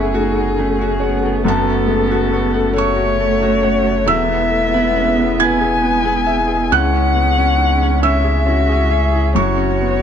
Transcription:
Already playing: sub bass F#1, felt piano F#2 G#3 A3 B3 G#5, analog synth pad A3 C#4 F#4, harp C#4 F#4 C#5 F#5, cello E4, violin G#4
0.13 felt piano A3, cello D#4, harp F#4
0.35 felt piano F#4
0.56 felt piano A3, harp A3, cello C#4
0.79 felt piano F#4, harp F#4
1.00 felt piano C#5, harp F#5
1.05 cello B3
1.23 felt piano F#4, harp A4
1.45 felt piano F#2 A5, harp F#4, violin A4
1.65 felt piano A3
1.86 felt piano G#3
2.09 felt piano A3, harp F#4
2.31 felt piano B3, harp C#5
2.52 felt piano A3, harp F#5
2.73 harp F#4, felt piano A4, violin C#5
2.78 cello A3, felt piano C#6
2.96 felt piano F#4
3.18 felt piano A3, harp A4
3.40 felt piano F#4, harp F#4
3.63 felt piano C#5, harp F#5
3.84 felt piano F#4, harp A4
4.06 sub bass E1, felt piano E2 E6, analog synth pad G#3 B3 G#4, cello B3, harp E4, violin E5
4.28 felt piano B3
4.51 felt piano A3
4.73 felt piano B3, harp E4
4.95 felt piano C#4, harp B4
5.16 felt piano B3, harp E5
5.39 harp E4, felt piano B4 G#6, violin G#5
5.61 felt piano G#4
5.82 felt piano B3
6.05 harp E4, felt piano G#4
6.26 harp E5, felt piano E5
6.48 felt piano G#4
6.71 sub bass C#2, felt piano C#2 F#6, cello C#4, harp C#4, analog synth pad C#4, violin F#5
6.93 felt piano C#4
7.15 felt piano B3
7.38 felt piano C#4, harp C#4
7.58 felt piano D#4
7.82 felt piano C#4, harp C#5
8.03 harp C#4, cello E4, felt piano C#5 E6, violin E5
8.24 felt piano G#4
8.46 felt piano C#4, harp E4, cello F#4
8.69 harp C#4, felt piano G#4
8.90 cello G#4, harp C#5, felt piano E5
9.12 harp E4, felt piano G#4
9.35 sub bass F#1, felt piano F#2 C#6, harp F#4, cello F#4, violin C#5
9.39 analog synth pad A3 C#4 F#4
9.57 felt piano C#4
9.81 felt piano B3

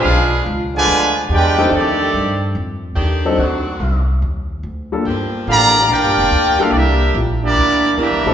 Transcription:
Already playing: saxophone section D3 G#3 B3 F4, trombone section G#3 D4 F4, trumpet section D4 G#4 B4 F5
0.04 upright bass B1
0.46 upright bass C#2
0.75 trombone section D3 F3 G#3, trumpet section F4 B4 D5 G#5
0.87 upright bass D2
1.29 upright bass E2, trombone section G#3 D4 G4, trumpet section F4 B4 D5 G5
1.58 saxophone section D#3 A3 D4 G4, grand piano G3 C4 D4 D#4 A4
1.71 upright bass F2, trombone section D#3 A3 D4, trumpet section C4 G4 A4 D5
2.14 upright bass G2
2.55 upright bass F2
2.95 upright bass D#2, saxophone section D#3 A3 D4 G4
3.25 grand piano F#3 C4 D4 D#4 A4
3.38 upright bass D2, saxophone section D#3 C4 D4 F#4
3.80 upright bass C2
4.22 upright bass D#2
4.63 upright bass D2
4.92 grand piano G3 A#3 D4 F4 A4
5.05 upright bass G1, saxophone section F3 A#3 D4 G4
5.47 upright bass A1, trombone section D3 F3 A#3, trumpet section G4 D5 F5 A#5
5.88 upright bass A#1, trombone section A#3 D4 G4, trumpet section F4 A#4 D5 G5
6.03 upright bass G1
6.17 upright bass F1
6.31 upright bass D2
6.58 grand piano G3 A#3 D4 E4 A4, trombone section A#3 D4 F4, trumpet section D4 G4 A#4 F5, muted upright bass stroke
6.71 upright bass C2, trombone section G3 A#3 E4, trumpet section D5
6.75 trumpet section D4 G4 A#4 E5
7.14 upright bass A#1
7.43 trombone section G3 A#3 D4, trumpet section A#3 E4 G4 D5
7.55 upright bass D2
7.97 upright bass E2, saxophone section E3 A#3 D4 A#4, trombone section G3 A#3 E4, trumpet section D4 G4 A#4 E5
8.11 upright bass C2
8.24 upright bass A#1, grand piano G3 C4 D4 D#4 A4

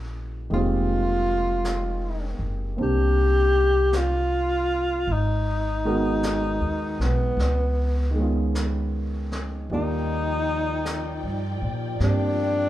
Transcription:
Already playing: upright bass A#1, grand piano E3 G#3 A#3 C#4 F#4
0.50 upright bass F1, grand piano D#3 G#3 A#3, tenor saxophone F4, brush sweep
0.54 grand piano C4 G4
1.65 brush sweep, snare, hi-hat pedal
2.39 upright bass F#1
2.77 upright bass C2, grand piano A#3 C4 D4 A#4, brush sweep
2.83 tenor saxophone G4
3.93 brush sweep, snare, hi-hat pedal
3.97 tenor saxophone F4
5.07 upright bass G#1, brush sweep
5.13 tenor saxophone D#4
5.85 grand piano D#3 G#3 B3 F#4 A#4
6.23 brush sweep, snare, hi-hat pedal
6.61 upright bass D#2
6.99 upright bass B1, tenor saxophone B3, snare
7.37 upright bass C#2, brush sweep, snare
8.11 grand piano D#3 G#3
8.17 grand piano B3 C#4
8.22 grand piano F4
8.55 brush sweep, snare, hi-hat pedal
9.32 snare
9.70 upright bass D#2, grand piano D#3 G3 A#3 F4 D5, string section F3 D#4 D5 G5, brush sweep
9.74 tenor saxophone D#4
10.85 brush sweep, snare, hi-hat pedal
11.23 upright bass G2
11.62 upright bass A#2
11.97 upright bass G2, grand piano A#3 C4, string section F5, brush sweep, snare
12.02 tenor saxophone D4, grand piano G4

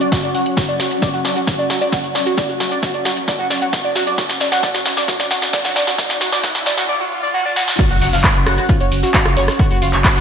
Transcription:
Already playing: synth drone F#3 C#4, analog synth pad C#4 F#4 F#5 C#6
0.01 analog synth lead D5, closed hi-hat
0.12 analog synth lead F#4, kick, snare, closed hi-hat
0.23 analog synth lead D5, closed hi-hat
0.35 analog synth lead F#4, open hi-hat
0.46 closed hi-hat
0.57 analog synth lead F#4, kick, snare, closed hi-hat, riser, shaker
0.68 analog synth lead D5, closed hi-hat, shaker
0.80 analog synth lead F#4, snare, open hi-hat
0.91 closed hi-hat, shaker
1.02 analog synth lead D5, kick, snare, closed hi-hat, shaker
1.14 analog synth lead F#4, closed hi-hat, shaker
1.25 analog synth lead D5, snare, open hi-hat
1.36 analog synth lead F#4, closed hi-hat, shaker
1.47 kick, snare, closed hi-hat, shaker
1.59 analog synth lead D5, closed hi-hat, shaker
1.70 analog synth lead F#4, snare, open hi-hat
1.81 analog synth lead D5, closed hi-hat, shaker
1.92 analog synth lead F#4, kick, snare, closed hi-hat, shaker
2.04 closed hi-hat, shaker
2.15 analog synth lead D5, snare, open hi-hat
2.26 analog synth lead F#4, closed hi-hat, shaker
2.38 analog synth lead D5, kick, snare, closed hi-hat, shaker
2.49 analog synth lead F#4, closed hi-hat, shaker
2.60 snare, open hi-hat
2.72 analog synth lead D5, closed hi-hat, shaker
2.83 analog synth lead F#4, kick, snare, closed hi-hat, shaker
2.94 analog synth lead D5, closed hi-hat, shaker
3.05 analog synth lead F#4, snare, open hi-hat
3.17 closed hi-hat, shaker
3.28 analog synth lead D5, kick, snare, closed hi-hat, shaker
3.39 analog synth lead F#4, closed hi-hat, shaker
3.50 analog synth lead D5, snare, open hi-hat
3.62 analog synth lead F#4, closed hi-hat, shaker
3.73 kick, snare, closed hi-hat, shaker
3.84 analog synth lead D5, closed hi-hat, shaker
3.95 analog synth lead F#4, snare, open hi-hat
4.07 analog synth lead D5, closed hi-hat, shaker
4.18 analog synth lead F#4, kick, snare, closed hi-hat, shaker
4.29 snare, closed hi-hat, shaker
4.41 analog synth lead D5, snare, open hi-hat
4.52 analog synth lead F#4, snare, closed hi-hat, shaker
4.63 analog synth lead D5, kick, snare, closed hi-hat, shaker
4.74 analog synth lead F#4, snare, closed hi-hat, shaker
4.86 snare, open hi-hat
4.97 analog synth lead D5, snare, closed hi-hat, shaker
5.08 analog synth lead F#4, kick, snare, closed hi-hat, shaker
5.20 analog synth lead D5, snare, closed hi-hat, shaker
5.31 analog synth lead F#4, snare, open hi-hat
5.42 snare, closed hi-hat, shaker
5.53 analog synth lead D5, kick, snare, closed hi-hat, shaker
5.65 analog synth lead F#4, snare, closed hi-hat, shaker
5.76 analog synth lead D5, snare, open hi-hat
5.87 analog synth lead F#4, snare, closed hi-hat, shaker
5.98 kick, snare, closed hi-hat, shaker
6.10 analog synth lead D5, snare, closed hi-hat, shaker
6.21 analog synth lead F#4, snare, open hi-hat
6.32 analog synth lead D5, snare, closed hi-hat, shaker
6.44 analog synth lead F#4, kick, snare, closed hi-hat, shaker
6.55 snare, closed hi-hat, shaker
6.66 analog synth lead D5, snare, open hi-hat
6.78 analog synth lead F#4, snare, closed hi-hat, shaker
6.89 analog synth lead D5
7.00 analog synth lead F#4
7.23 analog synth lead D5
7.34 analog synth lead F#4
7.45 analog synth lead D5
7.56 analog synth lead F#4, snare
7.68 snare
7.79 analog synth pad C#4, kick, closed hi-hat, crash, impact, shaker
7.90 sub bass F#1, analog synth lead F#4, analog synth pad F#5, closed hi-hat, shaker
8.01 sub bass F#1, analog synth lead F#4, snare, closed hi-hat, open hi-hat, ride
8.13 sub bass F#1, analog synth lead F4, snare, closed hi-hat, shaker
8.24 analog synth pad F#4, analog synth lead C#5, kick, snare, clap, closed hi-hat, shaker
8.35 sub bass F#1, closed hi-hat, shaker
8.44 sub bass F#1, analog synth lead F#4, analog synth pad C#6, cross-stick, closed hi-hat, open hi-hat, ride
8.58 analog synth lead F#4, closed hi-hat, shaker
8.69 analog synth lead F4, kick, closed hi-hat, shaker
8.80 sub bass F#1, analog synth lead C#5, closed hi-hat, shaker
8.92 sub bass F#1, closed hi-hat, open hi-hat, ride
9.03 analog synth lead F#4, snare, closed hi-hat, shaker
9.14 analog synth lead F#4, kick, snare, clap, closed hi-hat, shaker
9.26 sub bass F#1, analog synth lead F4, cross-stick, closed hi-hat, shaker
9.37 sub bass F#1, analog synth lead C#5, closed hi-hat, open hi-hat, ride
9.48 cross-stick, snare, closed hi-hat, shaker
9.59 analog synth lead F#4, kick, closed hi-hat, shaker
9.70 sub bass F#1, analog synth lead F#4, closed hi-hat, shaker
9.82 sub bass F#1, analog synth lead F4, open hi-hat, ride
9.93 sub bass F#1, analog synth lead C#5, clap, closed hi-hat, shaker
10.04 kick, snare, clap, closed hi-hat, shaker
10.16 sub bass F#1, analog synth lead F#4, snare, closed hi-hat, shaker

